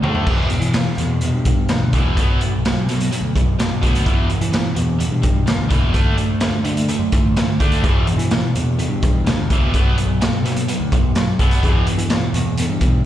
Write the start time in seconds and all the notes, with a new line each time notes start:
0.01 D2 D3 A3 D4, floor tom
0.15 floor tom
0.27 E2 B2 E3, kick, crash
0.50 E2 B2, closed hi-hat
0.61 E3, closed hi-hat
0.74 E2 B2, snare, closed hi-hat
0.98 E2 B2, closed hi-hat
1.21 E2 B2, closed hi-hat
1.34 G2
1.45 E2 B2, kick, closed hi-hat
1.69 D2 E2 B2, snare, closed hi-hat
1.93 E2 B2 E3, kick, closed hi-hat
2.05 E2
2.17 B1 B2 F#3 B3, kick, closed hi-hat
2.41 B2 F#3, closed hi-hat
2.52 B1
2.65 B2 F#3, snare, closed hi-hat
2.86 B2 F#3, snare, closed hi-hat
3.00 closed hi-hat
3.12 B2 F#3, closed hi-hat
3.21 D2
3.36 B2 F#3, kick, closed hi-hat
3.45 F#2
3.59 B2 F#3, snare, closed hi-hat
3.82 D2 B2 F#3 B3, kick, closed hi-hat
3.95 closed hi-hat
4.06 E2 B2 E3, kick, closed hi-hat
4.29 E2 B2, closed hi-hat
4.41 E3, closed hi-hat
4.52 E2 B2, snare, closed hi-hat
4.76 E2 B2, closed hi-hat
4.99 E2 B2, closed hi-hat
5.11 G2
5.22 E2 B2, kick, closed hi-hat
5.46 D2 E2 B2, snare, closed hi-hat
5.69 E2 B2 E3, kick, closed hi-hat
5.83 E2
5.92 D2 D3 A3 D4, kick, closed hi-hat
6.17 D3 A3, closed hi-hat
6.31 D2
6.40 D3 A3, snare, closed hi-hat
6.64 D3 A3, closed hi-hat
6.77 closed hi-hat
6.89 D3 A3, closed hi-hat
6.99 F#2
7.12 D3 A3, kick, closed hi-hat
7.24 A1
7.37 D3 A3, snare, closed hi-hat
7.60 D2 D3 A3 D4, kick, closed hi-hat
7.72 closed hi-hat
7.83 E2 B2 E3, kick, closed hi-hat
8.07 E2 B2, closed hi-hat
8.18 E3, closed hi-hat
8.31 E2 B2, snare, closed hi-hat
8.55 E2 B2, closed hi-hat
8.79 E2 B2, closed hi-hat
8.89 G2
9.03 E2 B2, kick, closed hi-hat
9.25 D2 E2 B2, snare, closed hi-hat
9.50 E2 B2 E3, kick, closed hi-hat
9.60 C2
9.74 B1 B2 F#3 B3, kick, closed hi-hat
9.97 B2 F#3, closed hi-hat
10.06 B1
10.21 B2 F#3, snare, closed hi-hat
10.43 B2 F#3, snare, closed hi-hat
10.56 closed hi-hat
10.68 B2 F#3, closed hi-hat
10.80 D2
10.92 B2 F#3, kick, closed hi-hat
11.01 F#2
11.15 B2 F#3, snare, closed hi-hat
11.39 B1 B2 F#3 B3, kick, closed hi-hat
11.51 closed hi-hat
11.63 E2 B2 E3, kick, closed hi-hat
11.87 E2 B2, closed hi-hat
11.98 E3, closed hi-hat
12.10 E2 B2, snare, closed hi-hat
12.34 E2 B2, closed hi-hat
12.57 E2 B2, closed hi-hat
12.69 G2
12.81 E2 B2, kick, closed hi-hat